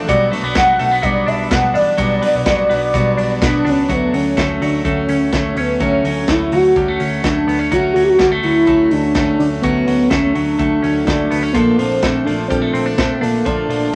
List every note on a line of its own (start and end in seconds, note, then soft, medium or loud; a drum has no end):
0.00 0.13 A3 medium
0.00 0.13 D4 medium
0.07 0.28 B1 loud
0.07 0.32 B2 medium
0.07 0.55 F#3 medium
0.07 0.32 G3 medium
0.07 0.32 B3 medium
0.07 0.31 D4 medium
0.07 0.29 F#4 loud
0.07 0.53 D5 medium
0.07 kick medium
0.07 hi-hat pedal medium
0.07 ride medium
0.30 0.44 A3 medium
0.30 0.54 B3 soft
0.30 0.54 D4 medium
0.30 0.55 F#4 medium
0.30 open hi-hat medium
0.43 0.53 B1 loud
0.43 0.79 B3 medium
0.53 0.75 B1 loud
0.53 1.02 F#3 medium
0.53 0.79 G3 medium
0.53 0.79 B3 medium
0.53 0.78 D4 medium
0.53 0.76 F#4 medium
0.53 kick loud
0.53 snare loud
0.53 hi-hat pedal medium
0.53 ride medium
0.57 0.79 F#5 loud
0.78 0.99 B1 loud
0.78 0.92 A3 medium
0.78 1.02 B3 soft
0.78 1.03 D4 soft
0.78 1.03 F#4 soft
0.78 1.04 F#5 loud
0.78 open hi-hat medium
0.92 1.50 B3 medium
1.02 1.23 B1 loud
1.02 1.50 B2 medium
1.02 1.97 F#3 medium
1.02 1.48 G3 medium
1.02 1.50 B3 medium
1.02 1.52 D4 medium
1.02 1.53 F#4 medium
1.02 1.29 D5 medium
1.02 kick loud
1.02 hi-hat pedal medium
1.02 ride soft
1.27 1.47 B1 loud
1.27 1.74 D4 medium
1.27 1.52 E5 loud
1.27 open hi-hat medium
1.50 1.71 B1 medium
1.50 1.97 G3 medium
1.50 2.21 B3 medium
1.50 1.98 B3 medium
1.50 1.99 D4 medium
1.50 2.00 F#4 medium
1.50 1.76 F#5 loud
1.50 kick loud
1.50 snare loud
1.50 hi-hat pedal medium
1.50 ride medium
1.74 1.95 A1 medium
1.74 3.17 D4 medium
1.74 3.42 D5 medium
1.74 open hi-hat medium
1.97 2.18 B1 medium
1.97 2.22 B2 medium
1.97 2.46 F#3 medium
1.97 2.22 G3 medium
1.97 2.23 B3 medium
1.97 2.22 D4 medium
1.97 2.20 F#4 medium
1.97 kick medium
1.97 hi-hat pedal medium
1.97 ride medium
2.22 2.68 B3 medium
2.22 2.45 B3 soft
2.22 2.46 D4 medium
2.22 2.46 F#4 medium
2.22 open hi-hat medium
2.35 2.45 B1 loud
2.45 2.66 B1 loud
2.45 2.93 F#3 medium
2.45 2.69 G3 medium
2.45 2.70 B3 medium
2.45 2.70 D4 medium
2.45 2.69 F#4 medium
2.45 kick loud
2.45 snare loud
2.45 hi-hat pedal medium
2.45 ride medium
2.69 2.90 B1 loud
2.69 3.41 B3 medium
2.69 2.93 B3 soft
2.69 2.94 D4 soft
2.69 2.94 F#4 medium
2.69 open hi-hat medium
2.94 3.14 B1 loud
2.94 3.42 B2 medium
2.94 3.89 F#3 medium
2.94 3.40 G3 medium
2.94 3.40 B3 medium
2.94 3.42 D4 medium
2.94 3.44 F#4 medium
2.94 kick medium
2.94 hi-hat pedal medium
2.94 ride soft
3.17 3.38 B1 loud
3.17 3.64 D4 medium
3.17 open hi-hat medium
3.41 3.62 B1 medium
3.41 3.65 G3 medium
3.41 3.66 B3 medium
3.41 3.94 B3 medium
3.41 3.65 D4 medium
3.41 3.71 D4 medium
3.41 3.63 F#4 medium
3.41 kick loud
3.41 snare loud
3.41 hi-hat pedal medium
3.41 ride medium
3.65 3.85 C#2 medium
3.65 3.89 B3 soft
3.65 5.09 D4 medium
3.65 3.90 D4 soft
3.65 3.89 F#4 medium
3.65 open hi-hat medium
3.69 3.94 C#4 medium
3.88 4.09 D2 medium
3.88 4.41 D3 medium
3.88 4.35 F#3 medium
3.88 4.12 F#3 medium
3.88 4.37 A3 medium
3.88 4.37 C#4 medium
3.88 4.38 F#4 medium
3.88 kick medium
3.88 closed hi-hat medium
3.92 4.14 B3 medium
4.13 4.33 D2 medium
4.13 4.61 F#3 soft
4.13 4.64 C#4 medium
4.13 open hi-hat medium
4.36 4.57 D2 loud
4.36 4.83 F#3 medium
4.36 4.84 A3 medium
4.36 4.84 C#4 medium
4.36 4.85 F#4 medium
4.36 kick loud
4.36 snare loud
4.36 closed hi-hat medium
4.61 4.81 D2 medium
4.61 5.79 F#3 medium
4.61 4.86 D4 medium
4.61 open hi-hat medium
4.83 5.05 D2 loud
4.83 5.37 D3 medium
4.83 5.31 F#3 medium
4.83 5.33 A3 medium
4.83 5.33 C#4 medium
4.83 5.60 C#4 medium
4.83 5.33 F#4 medium
4.83 kick loud
4.83 closed hi-hat medium
5.08 5.28 D2 medium
5.08 5.56 C#4 medium
5.08 open hi-hat medium
5.32 5.52 D2 medium
5.32 5.79 F#3 medium
5.32 6.28 A3 medium
5.32 5.80 A3 medium
5.32 5.80 C#4 medium
5.32 5.80 F#4 medium
5.32 kick loud
5.32 snare loud
5.32 closed hi-hat medium
5.55 5.76 D2 medium
5.55 5.82 B3 medium
5.55 6.99 C#4 medium
5.55 open hi-hat medium
5.79 6.00 D2 medium
5.79 6.32 D3 medium
5.79 6.25 F#3 medium
5.79 6.04 F#3 medium
5.79 6.27 A3 medium
5.79 6.28 C#4 medium
5.79 6.29 F#4 medium
5.79 kick medium
5.79 closed hi-hat medium
5.83 6.04 C#4 medium
6.04 6.24 D2 medium
6.04 6.51 F#3 medium
6.04 open hi-hat medium
6.08 6.32 C#4 medium
6.27 6.48 D2 medium
6.27 6.75 F#3 medium
6.27 6.76 A3 medium
6.27 6.77 A3 medium
6.27 6.76 C#4 medium
6.27 6.56 E4 loud
6.27 6.76 F#4 medium
6.27 kick loud
6.27 snare loud
6.27 closed hi-hat medium
6.52 6.72 D2 medium
6.52 7.70 F#3 medium
6.52 7.01 F#4 loud
6.52 open hi-hat medium
6.76 6.96 D2 loud
6.76 7.71 D3 medium
6.76 7.21 F#3 medium
6.76 6.88 G3 medium
6.76 7.24 A3 medium
6.76 7.25 C#4 medium
6.76 7.25 F#4 medium
6.76 kick medium
6.76 closed hi-hat medium
6.88 7.23 A3 medium
7.00 7.20 D2 loud
7.00 7.47 C#4 medium
7.00 open hi-hat medium
7.22 7.44 D2 medium
7.22 7.71 F#3 medium
7.22 8.18 A3 medium
7.22 7.73 A3 medium
7.22 7.74 D4 medium
7.22 7.73 F#4 medium
7.22 kick loud
7.22 snare loud
7.22 closed hi-hat medium
7.47 7.67 D2 loud
7.47 7.59 B3 medium
7.47 open hi-hat medium
7.59 8.91 C#4 soft
7.72 7.92 D2 medium
7.72 8.23 D3 medium
7.72 7.95 F#3 medium
7.72 8.17 F#3 medium
7.72 8.19 A3 medium
7.72 8.19 C#4 medium
7.72 7.93 F#4 medium
7.72 8.21 F#4 medium
7.72 kick medium
7.72 closed hi-hat medium
7.93 8.15 D2 medium
7.93 8.43 F#3 medium
7.93 8.05 F#4 medium
7.93 open hi-hat medium
8.03 8.10 G4 medium
8.09 8.18 F#4 medium
8.18 8.39 D2 loud
8.18 8.43 F#3 medium
8.18 8.32 G3 medium
8.18 8.43 A3 medium
8.18 8.44 C#4 medium
8.18 8.29 F#4 medium
8.18 kick loud
8.18 snare loud
8.18 closed hi-hat medium
8.22 8.41 F#4 medium
8.32 8.66 A3 medium
8.43 8.63 D2 medium
8.43 9.63 F#3 medium
8.43 8.66 A3 soft
8.43 8.67 C#4 soft
8.43 8.92 E4 medium
8.43 8.67 F#4 soft
8.43 open hi-hat medium
8.66 8.87 D2 loud
8.66 9.20 D3 medium
8.66 9.14 F#3 medium
8.66 9.15 A3 medium
8.66 9.15 C#4 medium
8.66 9.16 F#4 medium
8.66 kick medium
8.66 closed hi-hat soft
8.91 9.11 D2 medium
8.91 9.39 D4 loud
8.91 open hi-hat medium
9.15 9.35 D2 medium
9.15 9.61 F#3 medium
9.15 10.10 A3 medium
9.15 9.62 A3 medium
9.15 9.62 C#4 medium
9.15 9.62 F#4 medium
9.15 kick loud
9.15 snare loud
9.15 closed hi-hat medium
9.39 9.59 D2 loud
9.39 9.50 D4 medium
9.39 open hi-hat medium
9.61 9.83 D2 medium
9.61 10.15 D3 medium
9.61 10.09 F#3 medium
9.61 9.86 F#3 medium
9.61 10.11 A3 medium
9.61 10.11 B3 medium
9.61 10.11 C#4 medium
9.61 10.11 F#4 medium
9.61 kick medium
9.61 closed hi-hat medium
9.87 10.07 D2 medium
9.87 10.34 F#3 soft
9.87 open hi-hat medium
10.09 10.31 D2 medium
10.09 10.58 F#3 medium
10.09 10.58 A3 medium
10.09 10.60 A3 medium
10.09 10.34 C#4 medium
10.09 10.59 C#4 medium
10.09 10.60 F#4 medium
10.09 kick loud
10.09 snare loud
10.09 closed hi-hat medium
10.33 10.55 D2 medium
10.33 11.54 F#3 medium
10.33 11.05 D4 medium
10.33 open hi-hat medium
10.59 10.79 D2 medium
10.59 11.54 D3 medium
10.59 11.05 F#3 medium
10.59 11.06 A3 medium
10.59 11.07 A3 medium
10.59 11.08 F#4 medium
10.59 kick loud
10.59 closed hi-hat soft
10.83 11.03 D2 medium
10.83 11.30 C#4 medium
10.83 open hi-hat medium
11.05 11.27 D2 medium
11.05 11.54 F#3 medium
11.05 12.03 A3 medium
11.05 11.55 A3 medium
11.05 11.54 D4 loud
11.05 kick loud
11.05 snare medium
11.05 closed hi-hat medium
11.10 11.56 F#4 medium
11.31 11.51 D2 medium
11.31 11.43 B3 medium
11.31 open hi-hat medium
11.43 11.59 C#4 medium
11.53 11.74 A#1 medium
11.53 12.02 A#2 medium
11.53 12.49 D3 medium
11.53 11.78 F3 medium
11.53 12.00 F3 medium
11.53 11.79 A#3 medium
11.53 12.01 A#3 medium
11.53 12.03 D4 medium
11.53 12.03 A4 medium
11.53 kick medium
11.53 closed hi-hat medium
11.77 11.99 A#1 loud
11.77 12.25 F3 medium
11.77 12.26 C4 loud
11.77 open hi-hat medium
12.01 12.22 A#1 loud
12.01 12.25 F3 soft
12.01 12.50 A3 medium
12.01 12.26 A#3 medium
12.01 12.26 D4 medium
12.01 12.25 A4 medium
12.01 kick loud
12.01 snare loud
12.01 closed hi-hat medium
12.24 12.46 A#1 medium
12.24 13.44 F3 medium
12.24 12.47 D4 medium
12.24 12.50 D4 soft
12.24 12.50 A4 soft
12.24 open hi-hat medium
12.29 12.49 F3 soft
12.29 12.49 A#3 soft
12.48 12.70 A#1 loud
12.48 12.97 A#2 medium
12.48 13.44 D3 medium
12.48 12.95 F3 medium
12.48 12.62 G3 medium
12.48 12.97 A#3 medium
12.48 12.93 C4 medium
12.48 12.99 D4 medium
12.48 12.98 A4 medium
12.48 kick medium
12.48 closed hi-hat soft
12.62 12.97 A3 soft
12.74 12.94 A#1 medium
12.74 12.86 C4 medium
12.74 open hi-hat medium
12.86 13.20 D4 medium
12.97 13.17 A#1 medium
12.97 13.21 F3 medium
12.97 13.93 A3 medium
12.97 13.22 A#3 medium
12.97 13.22 C4 medium
12.97 13.21 D4 medium
12.97 13.20 A4 medium
12.97 kick loud
12.97 snare loud
12.97 closed hi-hat medium
13.20 13.42 A#1 medium
13.20 13.44 F3 soft
13.20 13.47 A#3 medium
13.20 13.44 A#3 soft
13.20 13.95 D4 medium
13.20 13.45 D4 soft
13.20 13.45 A4 medium
13.20 open hi-hat medium
13.44 13.66 A#1 loud
13.44 13.93 A#2 medium
13.44 13.95 D3 medium
13.44 13.68 F3 medium
13.44 13.90 F3 medium
13.44 13.92 A#3 medium
13.44 13.69 D4 medium
13.44 13.94 D4 medium
13.44 13.94 A4 medium
13.44 kick medium
13.44 closed hi-hat medium
13.69 13.89 A#1 medium
13.69 13.95 F3 medium
13.69 13.95 D4 loud
13.69 open hi-hat medium
13.91 13.95 F3 medium